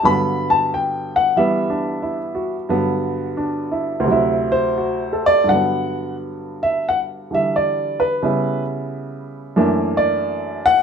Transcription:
upright piano
0.03 G2 D3 F#3 B3 B5
0.50 A5
0.74 G5
1.16 F#5
1.36 E3 G3 B3 E5
1.70 D4
2.03 E4
2.35 F#4
2.69 G2 D3 F#3 B3
3.37 D4
3.72 E4
4.00 D2
4.04 C3 F#3
4.11 E4
4.52 C5
4.78 F#4
5.13 A4
5.26 D5
5.44 G2 D3
5.49 F#3 F#5
5.54 B3
6.63 E5
6.89 F#5
7.31 D3 E3 G3 E5
7.56 D5
8.00 B4
8.23 C#3 G3 B3 E4
9.56 F#2 E3 A3 A#3 D4
9.97 D5
10.66 F#5

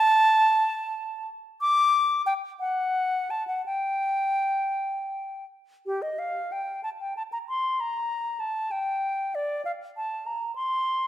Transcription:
flute
Already playing: A5
1.61 D6
2.26 G5
2.60 F#5
3.30 A5
3.47 F#5
3.66 G5
5.86 G4
6.02 D#5
6.19 F5
6.52 G5
6.83 A5
7.00 G5
7.17 A5
7.32 A#5
7.49 C6
7.80 A#5
8.40 A5
8.71 G5
9.35 D5
9.65 F5
9.97 A5
10.26 A#5
10.56 C6

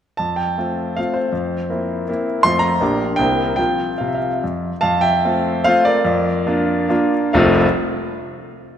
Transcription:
grand piano
0.17 F2 A5
0.36 G5
0.58 A3 C4 F4
0.96 A3 C4 F4 F5
1.14 C5
1.32 F2
1.70 A#3 C4 E4
2.09 A#3 C4 E4
2.43 F2 A3 C4 F4 C6
2.59 A#5
2.81 A#1 A#3 D4 G4
3.16 C2 A#3 C4 E4 G5
3.56 F3 C4 F4 G5
3.98 C3 F5
4.08 E5
4.15 F5
4.44 F2
4.81 F2 F5 A5
5.01 E5 G5
5.25 A3 C4 F4
5.64 A3 C4 F4 C5 F5
5.85 A#4 D5
6.05 F2
6.47 A#3 D4 F4
6.89 A#3 D4 F4
7.33 F1 C2 F3 A3 C4 F4 F5

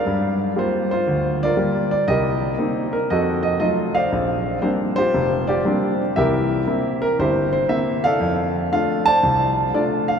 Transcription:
grand piano
Already playing: A#4 D5 F5
0.06 G2
0.56 G3 A#3 F4 C5
0.91 F4 C5
1.07 D2
1.43 F4 A#4 D5
1.57 G3 A#3 F4
1.91 D5
2.08 C2 G4 A#4 D#5
2.58 A#3 C4 D#4
2.93 A#4
3.10 F2 F#4 A4 D#5
3.43 D#5
3.60 F#3 A3 D#4 F4 D#5
3.95 C5 D5 F5
4.12 A#1
4.62 G3 A#3 C4 D4 C5
4.96 F4 G4 C5
5.15 F1
5.47 F4 G4 D5
5.65 G3 A#3 C4 D4
6.16 C2 E3 G4 A#4 E5
6.67 A#3 C4 E4
7.02 A#4
7.19 G1 E4 G4 C5
7.53 C5
7.69 A#3 C4 E4 E5
8.04 A4 D5 F5
8.20 F2
8.72 A3 D4 F4 F5
9.06 C5 D5 A5
9.23 C2
9.74 A3 D4 F4 D5
10.08 F5

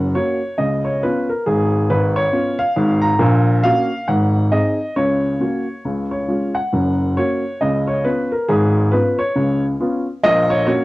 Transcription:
upright piano
Already playing: F#1 F#2 F#5
0.15 A#3 C#4 F#4 C#5
0.58 C#2 C#3 D#5
0.85 C#5
1.03 B3 C#4 F4 B4
1.29 A#4
1.46 G#1 G#2 G#4
1.90 G#1 G#2 B4
2.16 C#5
2.32 B3 C#4 F4
2.59 F5
2.76 G#1 G#2
3.02 A#5
3.19 A#1 A#2
3.63 A#3 C#4 F#4 F5
4.08 G#1 G#2 F#5
4.52 C4 D#4 G#4 D#5
4.96 C#2 C#3 C#5
5.40 A#3 C#4 F#4
5.85 C#2 C#3
6.11 C#5
6.28 G#3 C#4 F4
6.55 F#5
6.73 F#1 F#2
7.17 A#3 C#4 F#4 C#5
7.61 C#2 C#3 D#5
7.87 C#5
8.04 B3 C#4 F4 B4
8.32 A#4
8.48 G#1 G#2 G#4
8.92 B3 C#4 F4 B4
9.19 C#5
9.35 C#2 C#3
9.80 B3 C#4 F4
10.23 A#1 A#2 D#5
10.50 C#5
10.67 A#3 C#4 F#4 C#5

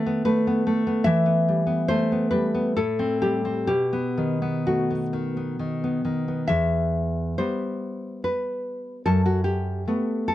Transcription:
nylon-string guitar
Already playing: D#3 A3 D#5
0.06 B3
0.25 A3 B4
0.47 B3
0.67 A3
0.87 B3
1.04 E3 E5
1.26 B3
1.49 G3
1.67 B3
1.88 A3 C5
2.12 B3
2.31 G3 B4
2.54 B3
2.77 A2 A4
2.99 C4
3.22 G3 G4
3.45 C4
3.67 B2 G4
3.93 B3
4.18 D#3
4.42 B3
4.67 A3 F#4
4.91 B3
5.13 D#3
5.37 B3
5.59 D#3
5.84 B3
6.05 D#3
6.28 B3
6.48 E2 E5
7.38 G3 B3 C5
8.24 B4
9.06 F#2 A4
9.26 F#4
9.44 G4
9.88 A3 B3
10.28 A4

